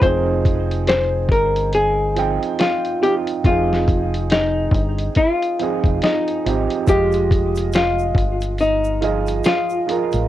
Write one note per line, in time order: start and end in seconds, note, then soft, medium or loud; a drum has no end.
0.01 1.29 F1 medium
0.01 1.16 F3 medium
0.01 1.17 C4 medium
0.01 1.17 D#4 medium
0.01 1.18 G#4 medium
0.01 0.87 C5 medium
0.01 kick loud
0.01 closed hi-hat medium
0.45 kick medium
0.45 closed hi-hat medium
0.71 closed hi-hat soft
0.87 1.31 C5 loud
0.87 snare loud
0.87 closed hi-hat medium
1.29 2.37 G1 medium
1.29 1.74 A#4 medium
1.29 kick loud
1.29 closed hi-hat medium
1.56 closed hi-hat medium
1.73 2.59 G#4 medium
1.73 closed hi-hat medium
2.15 2.74 F3 medium
2.15 2.74 C4 medium
2.15 2.75 D#4 medium
2.15 2.76 G5 medium
2.15 closed hi-hat medium
2.43 closed hi-hat soft
2.59 3.03 F4 medium
2.59 snare loud
2.59 closed hi-hat medium
2.85 closed hi-hat soft
3.00 3.31 F3 medium
3.00 3.32 C4 soft
3.00 3.33 D#4 medium
3.00 3.33 F4 medium
3.00 3.14 G4 medium
3.00 closed hi-hat medium
3.27 closed hi-hat soft
3.44 4.69 F1 loud
3.44 4.59 F3 medium
3.44 4.60 C4 medium
3.44 4.61 D#4 medium
3.44 4.33 F4 medium
3.44 kick loud
3.44 closed hi-hat medium
3.48 4.61 G#4 medium
3.73 snare soft
3.88 kick medium
3.88 closed hi-hat medium
4.14 closed hi-hat soft
4.30 5.13 D#4 medium
4.30 snare loud
4.30 closed hi-hat medium
4.72 5.08 G1 medium
4.72 kick loud
4.72 closed hi-hat medium
4.99 closed hi-hat soft
5.15 6.41 F4 medium
5.15 kick medium
5.15 closed hi-hat medium
5.42 closed hi-hat soft
5.59 6.17 F3 medium
5.59 6.18 C4 medium
5.59 6.18 D#4 medium
5.59 6.19 G#4 medium
5.59 closed hi-hat soft
5.84 5.99 F1 medium
5.84 kick medium
5.84 closed hi-hat soft
6.02 6.84 D#4 medium
6.02 snare loud
6.02 closed hi-hat medium
6.28 closed hi-hat soft
6.44 6.66 G#1 medium
6.44 6.75 F3 medium
6.44 6.76 C4 medium
6.44 6.76 D#4 medium
6.44 6.77 G4 medium
6.44 closed hi-hat medium
6.70 closed hi-hat soft
6.86 8.12 F1 medium
6.86 8.01 F3 medium
6.86 8.03 G#3 medium
6.86 8.02 F4 medium
6.86 7.74 G4 medium
6.86 8.03 D#5 medium
6.86 kick loud
6.86 closed hi-hat medium
6.86 shaker medium
7.12 closed hi-hat soft
7.12 shaker soft
7.31 kick medium
7.31 closed hi-hat medium
7.55 closed hi-hat soft
7.55 shaker soft
7.72 8.62 F4 medium
7.72 snare loud
7.72 closed hi-hat medium
7.72 shaker medium
7.99 shaker soft
8.14 9.40 G1 medium
8.14 kick loud
8.14 closed hi-hat medium
8.41 closed hi-hat soft
8.41 shaker medium
8.58 9.48 D#4 medium
8.58 closed hi-hat medium
8.58 shaker medium
8.84 shaker medium
9.01 9.59 F3 medium
9.01 9.60 F4 medium
9.01 9.61 G#4 medium
9.01 9.61 D#5 medium
9.01 closed hi-hat medium
9.27 closed hi-hat soft
9.27 shaker soft
9.44 10.28 F4 medium
9.44 snare loud
9.44 closed hi-hat medium
9.44 shaker medium
9.70 shaker soft
9.87 10.18 F3 medium
9.87 10.18 F4 soft
9.87 10.19 G#4 medium
9.87 10.19 A#4 medium
9.87 closed hi-hat medium
10.12 10.28 A1 medium
10.12 closed hi-hat soft
10.12 shaker soft